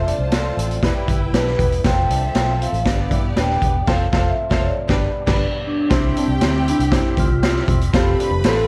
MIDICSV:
0, 0, Header, 1, 8, 480
1, 0, Start_track
1, 0, Key_signature, 0, "major"
1, 0, Tempo, 507614
1, 1747, Time_signature, 4, 2, 24, 8
1, 8201, End_track
2, 0, Start_track
2, 0, Title_t, "String section"
2, 0, Program_c, 0, 48
2, 0, Note_on_c, 0, 65, 76
2, 0, Note_on_c, 0, 72, 74
2, 0, Note_on_c, 0, 81, 83
2, 768, Note_off_c, 0, 72, 0
2, 769, Note_off_c, 0, 65, 0
2, 772, Note_off_c, 0, 81, 0
2, 780, Note_on_c, 0, 71, 81
2, 782, Note_on_c, 0, 79, 87
2, 784, Note_on_c, 0, 64, 84
2, 1725, Note_off_c, 0, 71, 0
2, 1726, Note_off_c, 0, 79, 0
2, 1727, Note_off_c, 0, 64, 0
2, 1746, Note_on_c, 0, 76, 97
2, 1747, Note_on_c, 0, 60, 84
2, 1747, Note_on_c, 0, 69, 82
2, 2688, Note_off_c, 0, 69, 0
2, 2688, Note_off_c, 0, 76, 0
2, 2689, Note_off_c, 0, 60, 0
2, 2700, Note_on_c, 0, 74, 94
2, 2704, Note_on_c, 0, 59, 81
2, 2704, Note_on_c, 0, 67, 85
2, 3645, Note_off_c, 0, 74, 0
2, 3647, Note_off_c, 0, 59, 0
2, 3647, Note_off_c, 0, 67, 0
2, 3659, Note_on_c, 0, 77, 99
2, 3661, Note_on_c, 0, 69, 95
2, 3662, Note_on_c, 0, 60, 105
2, 3826, Note_off_c, 0, 77, 0
2, 3828, Note_off_c, 0, 60, 0
2, 3828, Note_off_c, 0, 69, 0
2, 3906, Note_on_c, 0, 60, 91
2, 3910, Note_on_c, 0, 77, 93
2, 3913, Note_on_c, 0, 69, 92
2, 4071, Note_off_c, 0, 60, 0
2, 4072, Note_off_c, 0, 77, 0
2, 4074, Note_off_c, 0, 69, 0
2, 4260, Note_on_c, 0, 77, 94
2, 4262, Note_on_c, 0, 60, 85
2, 4262, Note_on_c, 0, 69, 91
2, 4427, Note_off_c, 0, 77, 0
2, 4428, Note_off_c, 0, 60, 0
2, 4428, Note_off_c, 0, 69, 0
2, 4622, Note_on_c, 0, 62, 99
2, 4624, Note_on_c, 0, 71, 101
2, 4624, Note_on_c, 0, 79, 95
2, 4788, Note_off_c, 0, 62, 0
2, 4789, Note_off_c, 0, 71, 0
2, 4789, Note_off_c, 0, 79, 0
2, 4985, Note_on_c, 0, 71, 100
2, 4986, Note_on_c, 0, 62, 96
2, 4986, Note_on_c, 0, 79, 90
2, 5150, Note_off_c, 0, 62, 0
2, 5150, Note_off_c, 0, 71, 0
2, 5150, Note_off_c, 0, 79, 0
2, 5593, Note_on_c, 0, 79, 120
2, 5594, Note_on_c, 0, 67, 100
2, 7235, Note_off_c, 0, 67, 0
2, 7235, Note_off_c, 0, 79, 0
2, 7506, Note_on_c, 0, 71, 107
2, 7507, Note_on_c, 0, 83, 123
2, 8201, Note_off_c, 0, 71, 0
2, 8201, Note_off_c, 0, 83, 0
2, 8201, End_track
3, 0, Start_track
3, 0, Title_t, "Vibraphone"
3, 0, Program_c, 1, 11
3, 74, Note_on_c, 1, 74, 67
3, 993, Note_off_c, 1, 74, 0
3, 1281, Note_on_c, 1, 71, 93
3, 1749, Note_on_c, 1, 79, 109
3, 1769, Note_off_c, 1, 71, 0
3, 2477, Note_on_c, 1, 77, 88
3, 2491, Note_off_c, 1, 79, 0
3, 2919, Note_off_c, 1, 77, 0
3, 3206, Note_on_c, 1, 79, 105
3, 3684, Note_on_c, 1, 77, 104
3, 3691, Note_off_c, 1, 79, 0
3, 4047, Note_off_c, 1, 77, 0
3, 4049, Note_on_c, 1, 76, 87
3, 4332, Note_on_c, 1, 73, 61
3, 4341, Note_off_c, 1, 76, 0
3, 4393, Note_off_c, 1, 73, 0
3, 4413, Note_on_c, 1, 74, 78
3, 5322, Note_off_c, 1, 74, 0
3, 5365, Note_on_c, 1, 62, 96
3, 5768, Note_off_c, 1, 62, 0
3, 5779, Note_on_c, 1, 62, 72
3, 5836, Note_off_c, 1, 62, 0
3, 5849, Note_on_c, 1, 60, 81
3, 6285, Note_off_c, 1, 60, 0
3, 6332, Note_on_c, 1, 62, 106
3, 6543, Note_off_c, 1, 62, 0
3, 6558, Note_on_c, 1, 64, 101
3, 6776, Note_off_c, 1, 64, 0
3, 6805, Note_on_c, 1, 65, 111
3, 7242, Note_off_c, 1, 65, 0
3, 7525, Note_on_c, 1, 67, 107
3, 7995, Note_on_c, 1, 69, 116
3, 8008, Note_off_c, 1, 67, 0
3, 8201, Note_off_c, 1, 69, 0
3, 8201, End_track
4, 0, Start_track
4, 0, Title_t, "Upright piano"
4, 0, Program_c, 2, 0
4, 0, Note_on_c, 2, 65, 74
4, 0, Note_on_c, 2, 69, 73
4, 0, Note_on_c, 2, 72, 78
4, 153, Note_off_c, 2, 65, 0
4, 156, Note_off_c, 2, 69, 0
4, 156, Note_off_c, 2, 72, 0
4, 300, Note_on_c, 2, 65, 74
4, 304, Note_on_c, 2, 69, 70
4, 307, Note_on_c, 2, 72, 76
4, 631, Note_off_c, 2, 65, 0
4, 633, Note_off_c, 2, 69, 0
4, 634, Note_off_c, 2, 72, 0
4, 785, Note_on_c, 2, 64, 85
4, 789, Note_on_c, 2, 67, 78
4, 793, Note_on_c, 2, 71, 97
4, 1114, Note_off_c, 2, 64, 0
4, 1116, Note_off_c, 2, 67, 0
4, 1118, Note_off_c, 2, 71, 0
4, 1265, Note_on_c, 2, 64, 73
4, 1269, Note_on_c, 2, 67, 70
4, 1277, Note_on_c, 2, 71, 80
4, 1594, Note_off_c, 2, 64, 0
4, 1596, Note_off_c, 2, 67, 0
4, 1600, Note_off_c, 2, 71, 0
4, 1748, Note_on_c, 2, 65, 75
4, 1749, Note_on_c, 2, 69, 65
4, 1756, Note_on_c, 2, 72, 80
4, 2075, Note_off_c, 2, 65, 0
4, 2076, Note_off_c, 2, 69, 0
4, 2079, Note_off_c, 2, 72, 0
4, 2227, Note_on_c, 2, 65, 74
4, 2230, Note_on_c, 2, 69, 68
4, 2233, Note_on_c, 2, 72, 80
4, 2555, Note_off_c, 2, 65, 0
4, 2557, Note_off_c, 2, 69, 0
4, 2558, Note_off_c, 2, 72, 0
4, 2702, Note_on_c, 2, 62, 73
4, 2705, Note_on_c, 2, 67, 63
4, 2709, Note_on_c, 2, 71, 77
4, 3033, Note_off_c, 2, 62, 0
4, 3034, Note_off_c, 2, 67, 0
4, 3036, Note_off_c, 2, 71, 0
4, 3179, Note_on_c, 2, 62, 70
4, 3185, Note_on_c, 2, 67, 65
4, 3187, Note_on_c, 2, 71, 86
4, 3511, Note_off_c, 2, 62, 0
4, 3514, Note_off_c, 2, 67, 0
4, 3515, Note_off_c, 2, 71, 0
4, 3662, Note_on_c, 2, 65, 107
4, 3664, Note_on_c, 2, 69, 99
4, 3668, Note_on_c, 2, 72, 102
4, 3828, Note_off_c, 2, 65, 0
4, 3829, Note_off_c, 2, 69, 0
4, 3831, Note_off_c, 2, 72, 0
4, 3900, Note_on_c, 2, 65, 102
4, 3906, Note_on_c, 2, 69, 99
4, 3909, Note_on_c, 2, 72, 92
4, 4067, Note_off_c, 2, 65, 0
4, 4070, Note_off_c, 2, 69, 0
4, 4072, Note_off_c, 2, 72, 0
4, 4263, Note_on_c, 2, 65, 102
4, 4269, Note_on_c, 2, 69, 95
4, 4270, Note_on_c, 2, 72, 99
4, 4429, Note_off_c, 2, 65, 0
4, 4432, Note_off_c, 2, 69, 0
4, 4432, Note_off_c, 2, 72, 0
4, 4624, Note_on_c, 2, 62, 90
4, 4631, Note_on_c, 2, 67, 89
4, 4636, Note_on_c, 2, 71, 94
4, 4789, Note_off_c, 2, 62, 0
4, 4793, Note_off_c, 2, 67, 0
4, 4796, Note_off_c, 2, 71, 0
4, 4979, Note_on_c, 2, 62, 103
4, 4984, Note_on_c, 2, 67, 109
4, 4988, Note_on_c, 2, 71, 109
4, 5146, Note_off_c, 2, 62, 0
4, 5149, Note_off_c, 2, 67, 0
4, 5151, Note_off_c, 2, 71, 0
4, 5577, Note_on_c, 2, 60, 106
4, 5580, Note_on_c, 2, 64, 92
4, 5585, Note_on_c, 2, 67, 95
4, 5587, Note_on_c, 2, 72, 105
4, 5910, Note_off_c, 2, 60, 0
4, 5911, Note_off_c, 2, 64, 0
4, 5914, Note_off_c, 2, 67, 0
4, 5915, Note_off_c, 2, 72, 0
4, 6061, Note_on_c, 2, 60, 85
4, 6065, Note_on_c, 2, 64, 69
4, 6070, Note_on_c, 2, 67, 75
4, 6070, Note_on_c, 2, 72, 88
4, 6391, Note_off_c, 2, 60, 0
4, 6394, Note_off_c, 2, 64, 0
4, 6396, Note_off_c, 2, 67, 0
4, 6396, Note_off_c, 2, 72, 0
4, 6531, Note_on_c, 2, 60, 78
4, 6536, Note_on_c, 2, 64, 71
4, 6541, Note_on_c, 2, 67, 74
4, 6543, Note_on_c, 2, 72, 88
4, 6866, Note_off_c, 2, 60, 0
4, 6868, Note_off_c, 2, 64, 0
4, 6871, Note_off_c, 2, 67, 0
4, 6872, Note_off_c, 2, 72, 0
4, 7022, Note_on_c, 2, 60, 81
4, 7026, Note_on_c, 2, 64, 69
4, 7030, Note_on_c, 2, 67, 73
4, 7031, Note_on_c, 2, 72, 87
4, 7351, Note_off_c, 2, 60, 0
4, 7353, Note_off_c, 2, 64, 0
4, 7355, Note_off_c, 2, 67, 0
4, 7356, Note_off_c, 2, 72, 0
4, 7499, Note_on_c, 2, 60, 106
4, 7505, Note_on_c, 2, 65, 95
4, 7508, Note_on_c, 2, 69, 89
4, 7510, Note_on_c, 2, 72, 118
4, 7829, Note_off_c, 2, 60, 0
4, 7832, Note_off_c, 2, 65, 0
4, 7833, Note_off_c, 2, 69, 0
4, 7835, Note_off_c, 2, 72, 0
4, 7983, Note_on_c, 2, 60, 87
4, 7983, Note_on_c, 2, 65, 79
4, 7987, Note_on_c, 2, 69, 74
4, 7991, Note_on_c, 2, 72, 88
4, 8201, Note_off_c, 2, 60, 0
4, 8201, Note_off_c, 2, 65, 0
4, 8201, Note_off_c, 2, 69, 0
4, 8201, Note_off_c, 2, 72, 0
4, 8201, End_track
5, 0, Start_track
5, 0, Title_t, "Clean electric guitar"
5, 0, Program_c, 3, 27
5, 66, Note_on_c, 3, 62, 79
5, 206, Note_off_c, 3, 62, 0
5, 311, Note_on_c, 3, 60, 80
5, 450, Note_off_c, 3, 60, 0
5, 557, Note_on_c, 3, 60, 76
5, 694, Note_off_c, 3, 60, 0
5, 1035, Note_on_c, 3, 64, 73
5, 1172, Note_off_c, 3, 64, 0
5, 1277, Note_on_c, 3, 62, 80
5, 1414, Note_off_c, 3, 62, 0
5, 1517, Note_on_c, 3, 59, 76
5, 1654, Note_off_c, 3, 59, 0
5, 1989, Note_on_c, 3, 62, 79
5, 2129, Note_off_c, 3, 62, 0
5, 2236, Note_on_c, 3, 60, 89
5, 2374, Note_off_c, 3, 60, 0
5, 2470, Note_on_c, 3, 60, 79
5, 2610, Note_off_c, 3, 60, 0
5, 2947, Note_on_c, 3, 64, 72
5, 3087, Note_off_c, 3, 64, 0
5, 3191, Note_on_c, 3, 62, 82
5, 3330, Note_off_c, 3, 62, 0
5, 3425, Note_on_c, 3, 59, 76
5, 3566, Note_off_c, 3, 59, 0
5, 5592, Note_on_c, 3, 60, 93
5, 5731, Note_off_c, 3, 60, 0
5, 5840, Note_on_c, 3, 62, 86
5, 5976, Note_off_c, 3, 62, 0
5, 6313, Note_on_c, 3, 64, 81
5, 6451, Note_off_c, 3, 64, 0
5, 6793, Note_on_c, 3, 60, 88
5, 6930, Note_off_c, 3, 60, 0
5, 7025, Note_on_c, 3, 60, 86
5, 7476, Note_off_c, 3, 60, 0
5, 7503, Note_on_c, 3, 65, 103
5, 7643, Note_off_c, 3, 65, 0
5, 7748, Note_on_c, 3, 62, 85
5, 7887, Note_off_c, 3, 62, 0
5, 8201, End_track
6, 0, Start_track
6, 0, Title_t, "Tonewheel organ"
6, 0, Program_c, 4, 16
6, 0, Note_on_c, 4, 53, 64
6, 0, Note_on_c, 4, 57, 65
6, 0, Note_on_c, 4, 60, 61
6, 0, Note_on_c, 4, 65, 71
6, 781, Note_off_c, 4, 60, 0
6, 781, Note_off_c, 4, 65, 0
6, 782, Note_off_c, 4, 53, 0
6, 782, Note_off_c, 4, 57, 0
6, 793, Note_on_c, 4, 55, 65
6, 795, Note_on_c, 4, 59, 60
6, 796, Note_on_c, 4, 52, 71
6, 797, Note_on_c, 4, 64, 80
6, 1741, Note_off_c, 4, 55, 0
6, 1742, Note_off_c, 4, 52, 0
6, 1742, Note_off_c, 4, 59, 0
6, 1743, Note_off_c, 4, 64, 0
6, 1758, Note_on_c, 4, 53, 69
6, 1760, Note_on_c, 4, 65, 75
6, 1762, Note_on_c, 4, 57, 66
6, 1764, Note_on_c, 4, 60, 67
6, 2704, Note_off_c, 4, 53, 0
6, 2705, Note_off_c, 4, 65, 0
6, 2706, Note_off_c, 4, 57, 0
6, 2707, Note_off_c, 4, 60, 0
6, 2712, Note_on_c, 4, 67, 84
6, 2714, Note_on_c, 4, 62, 66
6, 2715, Note_on_c, 4, 55, 73
6, 2715, Note_on_c, 4, 59, 69
6, 3661, Note_off_c, 4, 67, 0
6, 3662, Note_off_c, 4, 55, 0
6, 3662, Note_off_c, 4, 62, 0
6, 3663, Note_off_c, 4, 59, 0
6, 3666, Note_on_c, 4, 57, 64
6, 3666, Note_on_c, 4, 65, 77
6, 3668, Note_on_c, 4, 53, 65
6, 3669, Note_on_c, 4, 60, 62
6, 4618, Note_off_c, 4, 57, 0
6, 4618, Note_off_c, 4, 65, 0
6, 4619, Note_off_c, 4, 53, 0
6, 4619, Note_off_c, 4, 60, 0
6, 4628, Note_on_c, 4, 55, 69
6, 4629, Note_on_c, 4, 62, 65
6, 4629, Note_on_c, 4, 67, 78
6, 4631, Note_on_c, 4, 59, 66
6, 5578, Note_off_c, 4, 55, 0
6, 5579, Note_off_c, 4, 62, 0
6, 5579, Note_off_c, 4, 67, 0
6, 5580, Note_off_c, 4, 59, 0
6, 5593, Note_on_c, 4, 60, 70
6, 5594, Note_on_c, 4, 67, 81
6, 5595, Note_on_c, 4, 76, 66
6, 5596, Note_on_c, 4, 55, 71
6, 7489, Note_off_c, 4, 67, 0
6, 7490, Note_off_c, 4, 55, 0
6, 7490, Note_off_c, 4, 76, 0
6, 7513, Note_on_c, 4, 65, 74
6, 7514, Note_on_c, 4, 53, 74
6, 7514, Note_on_c, 4, 57, 70
6, 8201, Note_off_c, 4, 53, 0
6, 8201, Note_off_c, 4, 57, 0
6, 8201, Note_off_c, 4, 60, 0
6, 8201, Note_off_c, 4, 65, 0
6, 8201, End_track
7, 0, Start_track
7, 0, Title_t, "Fingered electric bass"
7, 0, Program_c, 5, 33
7, 0, Note_on_c, 5, 29, 101
7, 112, Note_off_c, 5, 29, 0
7, 177, Note_on_c, 5, 36, 73
7, 468, Note_off_c, 5, 36, 0
7, 540, Note_on_c, 5, 33, 93
7, 734, Note_off_c, 5, 33, 0
7, 781, Note_on_c, 5, 28, 104
7, 879, Note_off_c, 5, 28, 0
7, 1020, Note_on_c, 5, 31, 81
7, 1215, Note_off_c, 5, 31, 0
7, 1256, Note_on_c, 5, 35, 85
7, 1452, Note_off_c, 5, 35, 0
7, 1503, Note_on_c, 5, 28, 90
7, 1697, Note_off_c, 5, 28, 0
7, 1745, Note_on_c, 5, 29, 98
7, 1938, Note_off_c, 5, 29, 0
7, 1979, Note_on_c, 5, 36, 89
7, 2174, Note_off_c, 5, 36, 0
7, 2223, Note_on_c, 5, 35, 89
7, 2512, Note_off_c, 5, 35, 0
7, 2577, Note_on_c, 5, 33, 95
7, 2677, Note_off_c, 5, 33, 0
7, 2697, Note_on_c, 5, 31, 111
7, 2893, Note_off_c, 5, 31, 0
7, 2939, Note_on_c, 5, 43, 88
7, 3134, Note_off_c, 5, 43, 0
7, 3178, Note_on_c, 5, 27, 90
7, 3374, Note_off_c, 5, 27, 0
7, 3422, Note_on_c, 5, 28, 94
7, 3616, Note_off_c, 5, 28, 0
7, 3664, Note_on_c, 5, 29, 93
7, 3829, Note_off_c, 5, 29, 0
7, 3904, Note_on_c, 5, 29, 94
7, 4069, Note_off_c, 5, 29, 0
7, 4262, Note_on_c, 5, 29, 98
7, 4428, Note_off_c, 5, 29, 0
7, 4623, Note_on_c, 5, 31, 104
7, 4789, Note_off_c, 5, 31, 0
7, 4983, Note_on_c, 5, 31, 98
7, 5149, Note_off_c, 5, 31, 0
7, 5585, Note_on_c, 5, 36, 111
7, 5778, Note_off_c, 5, 36, 0
7, 5937, Note_on_c, 5, 36, 97
7, 6037, Note_off_c, 5, 36, 0
7, 6062, Note_on_c, 5, 38, 101
7, 6351, Note_off_c, 5, 38, 0
7, 6424, Note_on_c, 5, 36, 98
7, 6616, Note_off_c, 5, 36, 0
7, 6779, Note_on_c, 5, 38, 93
7, 6878, Note_off_c, 5, 38, 0
7, 6897, Note_on_c, 5, 36, 101
7, 7188, Note_off_c, 5, 36, 0
7, 7261, Note_on_c, 5, 28, 104
7, 7454, Note_off_c, 5, 28, 0
7, 7503, Note_on_c, 5, 29, 114
7, 7695, Note_off_c, 5, 29, 0
7, 7853, Note_on_c, 5, 29, 98
7, 7953, Note_off_c, 5, 29, 0
7, 7973, Note_on_c, 5, 33, 96
7, 8201, Note_off_c, 5, 33, 0
7, 8201, End_track
8, 0, Start_track
8, 0, Title_t, "Drums"
8, 73, Note_on_c, 9, 42, 73
8, 168, Note_off_c, 9, 42, 0
8, 299, Note_on_c, 9, 42, 79
8, 304, Note_on_c, 9, 38, 106
8, 393, Note_off_c, 9, 42, 0
8, 399, Note_off_c, 9, 38, 0
8, 555, Note_on_c, 9, 42, 69
8, 650, Note_off_c, 9, 42, 0
8, 670, Note_on_c, 9, 42, 45
8, 764, Note_off_c, 9, 42, 0
8, 782, Note_on_c, 9, 36, 92
8, 783, Note_on_c, 9, 38, 105
8, 795, Note_on_c, 9, 42, 91
8, 877, Note_off_c, 9, 36, 0
8, 878, Note_off_c, 9, 38, 0
8, 889, Note_off_c, 9, 42, 0
8, 1023, Note_on_c, 9, 36, 89
8, 1028, Note_on_c, 9, 42, 73
8, 1118, Note_off_c, 9, 36, 0
8, 1123, Note_off_c, 9, 42, 0
8, 1265, Note_on_c, 9, 42, 85
8, 1266, Note_on_c, 9, 38, 112
8, 1360, Note_off_c, 9, 42, 0
8, 1361, Note_off_c, 9, 38, 0
8, 1394, Note_on_c, 9, 38, 35
8, 1489, Note_off_c, 9, 38, 0
8, 1504, Note_on_c, 9, 36, 89
8, 1506, Note_on_c, 9, 42, 69
8, 1599, Note_off_c, 9, 36, 0
8, 1600, Note_off_c, 9, 42, 0
8, 1628, Note_on_c, 9, 42, 49
8, 1723, Note_off_c, 9, 42, 0
8, 1742, Note_on_c, 9, 42, 77
8, 1743, Note_on_c, 9, 38, 105
8, 1745, Note_on_c, 9, 36, 104
8, 1837, Note_off_c, 9, 38, 0
8, 1837, Note_off_c, 9, 42, 0
8, 1840, Note_off_c, 9, 36, 0
8, 1990, Note_on_c, 9, 42, 72
8, 2084, Note_off_c, 9, 42, 0
8, 2219, Note_on_c, 9, 42, 81
8, 2224, Note_on_c, 9, 38, 107
8, 2313, Note_off_c, 9, 42, 0
8, 2319, Note_off_c, 9, 38, 0
8, 2474, Note_on_c, 9, 42, 72
8, 2568, Note_off_c, 9, 42, 0
8, 2588, Note_on_c, 9, 42, 42
8, 2683, Note_off_c, 9, 42, 0
8, 2700, Note_on_c, 9, 36, 96
8, 2700, Note_on_c, 9, 38, 102
8, 2712, Note_on_c, 9, 42, 96
8, 2795, Note_off_c, 9, 36, 0
8, 2795, Note_off_c, 9, 38, 0
8, 2806, Note_off_c, 9, 42, 0
8, 2940, Note_on_c, 9, 36, 92
8, 2942, Note_on_c, 9, 42, 70
8, 3035, Note_off_c, 9, 36, 0
8, 3037, Note_off_c, 9, 42, 0
8, 3181, Note_on_c, 9, 42, 84
8, 3182, Note_on_c, 9, 38, 120
8, 3275, Note_off_c, 9, 42, 0
8, 3276, Note_off_c, 9, 38, 0
8, 3308, Note_on_c, 9, 38, 30
8, 3403, Note_off_c, 9, 38, 0
8, 3421, Note_on_c, 9, 36, 79
8, 3423, Note_on_c, 9, 42, 71
8, 3516, Note_off_c, 9, 36, 0
8, 3517, Note_off_c, 9, 42, 0
8, 3663, Note_on_c, 9, 49, 72
8, 3664, Note_on_c, 9, 36, 108
8, 3664, Note_on_c, 9, 38, 99
8, 3758, Note_off_c, 9, 36, 0
8, 3758, Note_off_c, 9, 49, 0
8, 3759, Note_off_c, 9, 38, 0
8, 3903, Note_on_c, 9, 38, 103
8, 3904, Note_on_c, 9, 36, 103
8, 3998, Note_off_c, 9, 36, 0
8, 3998, Note_off_c, 9, 38, 0
8, 4263, Note_on_c, 9, 38, 98
8, 4264, Note_on_c, 9, 36, 98
8, 4358, Note_off_c, 9, 38, 0
8, 4359, Note_off_c, 9, 36, 0
8, 4625, Note_on_c, 9, 36, 108
8, 4625, Note_on_c, 9, 38, 106
8, 4720, Note_off_c, 9, 36, 0
8, 4720, Note_off_c, 9, 38, 0
8, 4986, Note_on_c, 9, 36, 110
8, 4987, Note_on_c, 9, 49, 79
8, 4988, Note_on_c, 9, 38, 101
8, 5081, Note_off_c, 9, 36, 0
8, 5082, Note_off_c, 9, 49, 0
8, 5083, Note_off_c, 9, 38, 0
8, 5585, Note_on_c, 9, 38, 118
8, 5585, Note_on_c, 9, 42, 90
8, 5586, Note_on_c, 9, 36, 127
8, 5679, Note_off_c, 9, 38, 0
8, 5679, Note_off_c, 9, 42, 0
8, 5681, Note_off_c, 9, 36, 0
8, 5831, Note_on_c, 9, 42, 83
8, 5925, Note_off_c, 9, 42, 0
8, 6060, Note_on_c, 9, 42, 88
8, 6066, Note_on_c, 9, 38, 118
8, 6155, Note_off_c, 9, 42, 0
8, 6161, Note_off_c, 9, 38, 0
8, 6314, Note_on_c, 9, 42, 81
8, 6409, Note_off_c, 9, 42, 0
8, 6431, Note_on_c, 9, 42, 50
8, 6526, Note_off_c, 9, 42, 0
8, 6541, Note_on_c, 9, 36, 109
8, 6541, Note_on_c, 9, 38, 110
8, 6552, Note_on_c, 9, 42, 101
8, 6635, Note_off_c, 9, 38, 0
8, 6636, Note_off_c, 9, 36, 0
8, 6647, Note_off_c, 9, 42, 0
8, 6782, Note_on_c, 9, 36, 99
8, 6788, Note_on_c, 9, 42, 81
8, 6877, Note_off_c, 9, 36, 0
8, 6882, Note_off_c, 9, 42, 0
8, 7025, Note_on_c, 9, 42, 86
8, 7026, Note_on_c, 9, 38, 124
8, 7120, Note_off_c, 9, 42, 0
8, 7121, Note_off_c, 9, 38, 0
8, 7150, Note_on_c, 9, 38, 35
8, 7245, Note_off_c, 9, 38, 0
8, 7262, Note_on_c, 9, 36, 97
8, 7266, Note_on_c, 9, 42, 76
8, 7357, Note_off_c, 9, 36, 0
8, 7361, Note_off_c, 9, 42, 0
8, 7388, Note_on_c, 9, 42, 59
8, 7483, Note_off_c, 9, 42, 0
8, 7505, Note_on_c, 9, 36, 113
8, 7508, Note_on_c, 9, 38, 118
8, 7508, Note_on_c, 9, 42, 80
8, 7599, Note_off_c, 9, 36, 0
8, 7603, Note_off_c, 9, 38, 0
8, 7603, Note_off_c, 9, 42, 0
8, 7753, Note_on_c, 9, 42, 85
8, 7847, Note_off_c, 9, 42, 0
8, 7979, Note_on_c, 9, 42, 91
8, 7984, Note_on_c, 9, 38, 114
8, 8073, Note_off_c, 9, 42, 0
8, 8079, Note_off_c, 9, 38, 0
8, 8201, End_track
0, 0, End_of_file